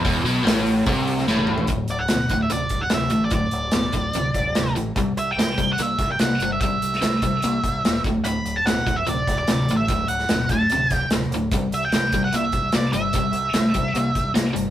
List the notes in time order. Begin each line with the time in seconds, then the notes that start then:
0.05 E1 E2, kick, open hi-hat
0.24 B1 B2, open hi-hat
0.44 A1 A2, snare, open hi-hat
0.67 open hi-hat
0.86 C2 C3, kick, open hi-hat
1.07 open hi-hat
1.18 snare
1.27 A1 A2, snare
1.37 high tom
1.47 mid tom
1.58 floor tom
1.67 D1 D2 A2, kick, closed hi-hat
1.88 D1 D5, closed hi-hat
1.99 F#5
2.08 D1 D2 B2, snare, closed hi-hat
2.29 D1 D2 A2, kick, closed hi-hat
2.42 E5
2.50 D1 D2 C3 D5, closed hi-hat
2.69 D1, kick, closed hi-hat
2.81 F#5
2.90 D1 D2 C3, snare, closed hi-hat
2.94 E5
3.10 A1 D2 A2, closed hi-hat
3.25 D5
3.30 D1 D2 A2, kick, closed hi-hat
3.34 D5
3.51 D1, closed hi-hat
3.71 D1 D2 B2, snare, closed hi-hat
3.93 D1 D2 A2, kick, closed hi-hat
4.13 D1 D2 C3, closed hi-hat
4.34 D1, kick, closed hi-hat
4.55 D1 D2 C3, snare, closed hi-hat
4.75 A1 D2 A2, closed hi-hat
4.95 C2 C3 G3, kick, closed hi-hat
5.16 C2 E5, closed hi-hat
5.31 G5
5.36 C2 C3 A3, snare, closed hi-hat
5.58 C2 C3 G3, kick, closed hi-hat
5.73 F#5
5.78 C2 C3 A#3 E5, closed hi-hat
5.99 C2, kick, snare, closed hi-hat
6.12 G5
6.19 C2 C3 A#3 F#5, snare, closed hi-hat
6.40 G1 C3 G3, closed hi-hat
6.52 E5
6.61 C2 C3 G3 E5, kick, closed hi-hat
6.82 C2, closed hi-hat
6.93 snare
7.01 C2 C3 A3, snare, closed hi-hat
7.22 C2 C3 G3, kick, closed hi-hat
7.42 C2 C3 A#3, closed hi-hat
7.63 C2, kick, closed hi-hat
7.83 E1 C3 A#3, snare, closed hi-hat
8.04 D1 D2 A2, kick, closed hi-hat
8.24 D1 D2 A2 B5, closed hi-hat
8.44 D1, closed hi-hat
8.56 A5
8.64 D1 D2 B2 F#5, snare, closed hi-hat
8.86 D1 D2 A2, kick, closed hi-hat
8.96 E5
9.06 D1 D2 C3 D5, closed hi-hat
9.27 D1, kick, snare, closed hi-hat
9.39 D5
9.47 D1 D2 C3, snare, closed hi-hat
9.68 A1 D2 A2, closed hi-hat
9.77 E5
9.88 D1 D2 A2, kick, closed hi-hat
10.08 D1 F#5, closed hi-hat
10.19 snare
10.29 D1 D2 B2, snare, closed hi-hat
10.49 D1 D2 A2 A5, kick, closed hi-hat
10.70 D1 D2 C3, closed hi-hat
10.90 D1, kick, snare, closed hi-hat
10.95 G5
11.09 D1 D2, snare, closed hi-hat
11.13 C3
11.30 D1, closed hi-hat
11.34 D2 A2
11.51 C2 C3 G3, kick, closed hi-hat
11.71 C2 E5, closed hi-hat
11.85 G5
11.92 C2 C3 A3, snare, closed hi-hat
12.12 C2 C3 G3, kick, closed hi-hat
12.24 F#5
12.32 C2 C3 A#3 E5, closed hi-hat
12.52 C2, kick, closed hi-hat
12.72 C2 C3 A#3 D5, snare, closed hi-hat
12.92 G1 C3 G3 E5, closed hi-hat
13.13 C2 C3 G3, kick, closed hi-hat
13.32 C2, closed hi-hat
13.53 C2 C3 A3, snare, closed hi-hat
13.74 C2 C3 G3, kick, closed hi-hat
13.94 C2 C3 A#3, closed hi-hat
14.15 C2, kick, closed hi-hat
14.34 C2 C3 A#3, snare, closed hi-hat
14.53 G1 C3 G3, closed hi-hat